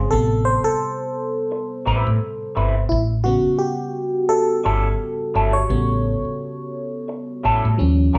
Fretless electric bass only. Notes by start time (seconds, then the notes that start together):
0.13 A1
0.67 muted fretless electric bass stroke
1.87 A1
2.07 A2
2.57 G1
2.92 A1
3.46 muted fretless electric bass stroke
4.66 G1
5.35 G1
5.70 A1
6.25 muted fretless electric bass stroke
7.45 A1
7.65 A2
7.80 D#2
8.15 C2